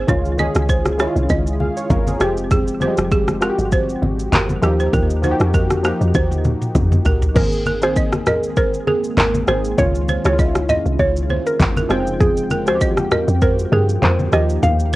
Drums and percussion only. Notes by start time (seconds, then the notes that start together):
0.08 kick, low conga, shaker
0.25 shaker
0.39 high conga, shaker
0.55 cross-stick, shaker
0.69 kick, shaker
0.85 cross-stick, high conga, shaker
0.99 cross-stick, shaker
1.16 shaker
1.29 kick, shaker
1.47 shaker
1.60 high conga
1.77 shaker
1.90 kick, high conga, low conga, shaker
2.07 high conga, shaker
2.20 cross-stick, shaker
2.37 shaker
2.51 kick, low conga, shaker
2.67 shaker
2.81 high conga, shaker
2.97 cross-stick, shaker
3.11 kick, shaker
3.28 cross-stick, high conga, shaker
3.42 cross-stick, shaker
3.59 shaker
3.72 kick, shaker
3.89 shaker
4.03 high conga
4.19 shaker
4.33 clap, high conga, low conga, shaker
4.49 high conga, shaker
4.63 cross-stick, shaker
4.80 shaker
4.93 kick, low conga, shaker
5.10 shaker
5.23 high conga, shaker
5.40 cross-stick, shaker
5.54 kick, shaker
5.70 cross-stick, high conga, shaker
5.84 cross-stick, shaker
6.01 shaker
6.14 kick, high tom, shaker
6.31 high tom, shaker
6.44 mid tom, high conga, shaker
6.62 mid tom, shaker
6.75 kick, mid tom, high conga, low conga, shaker
6.92 mid tom, high conga, shaker
7.05 floor tom, shaker
7.22 floor tom, shaker
7.36 kick, crash, low conga, shaker
7.52 shaker
7.66 high conga, shaker
7.82 cross-stick, shaker
7.96 kick, shaker
8.12 cross-stick, high conga, shaker
8.26 cross-stick, low conga, shaker
8.43 shaker
8.56 kick, shaker
8.74 shaker
8.87 high conga
9.04 shaker
9.17 clap, high conga, low conga, shaker
9.34 high conga, shaker
9.47 cross-stick, shaker
9.64 shaker
9.78 kick, low conga, shaker
9.95 shaker
10.08 high conga, shaker
10.25 cross-stick, shaker
10.39 kick, shaker
10.55 cross-stick, high conga, shaker
10.69 low conga, shaker
10.86 shaker
10.99 kick, shaker
11.16 shaker
11.30 high conga
11.47 shaker
11.60 kick, clap, high conga, low conga, shaker
11.76 high conga, shaker
11.90 cross-stick, shaker
12.07 shaker
12.20 kick, low conga, shaker
12.37 shaker
12.51 high conga, shaker
12.67 cross-stick, shaker
12.81 kick, shaker
12.97 cross-stick, high conga, shaker
13.11 cross-stick, low conga, shaker
13.28 shaker
13.41 kick, shaker
13.59 shaker
13.72 high conga
13.89 shaker
14.02 clap, high conga, low conga, shaker
14.19 high conga, shaker
14.32 cross-stick, shaker
14.49 shaker
14.63 low conga, shaker
14.80 shaker